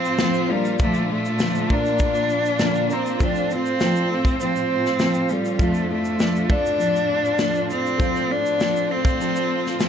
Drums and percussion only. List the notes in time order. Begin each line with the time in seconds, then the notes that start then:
0.05 shaker
0.18 snare, shaker
0.34 shaker
0.65 shaker
0.79 kick, shaker
0.94 shaker
1.25 shaker
1.39 snare, shaker
1.55 shaker
1.70 kick
1.86 shaker
1.99 kick, shaker
2.15 shaker
2.29 shaker
2.45 shaker
2.59 snare, shaker
2.75 shaker
2.90 shaker
3.06 shaker
3.20 kick, shaker
3.35 shaker
3.50 shaker
3.66 shaker
3.80 snare, shaker
3.96 shaker
4.25 kick, shaker
4.41 shaker
4.56 shaker
4.86 snare, shaker
4.99 snare, shaker
5.14 shaker
5.29 shaker
5.45 shaker
5.59 kick, shaker
5.74 shaker
6.05 shaker
6.19 snare, shaker
6.36 shaker
6.50 kick
6.66 shaker
6.80 shaker
6.96 shaker
7.25 shaker
7.39 snare, shaker
7.55 shaker
7.70 shaker
7.86 shaker
8.00 kick, shaker
8.15 shaker
8.46 shaker
8.60 snare, shaker
8.76 shaker
9.05 kick, shaker
9.21 shaker
9.36 shaker
9.67 snare, shaker
9.80 snare, shaker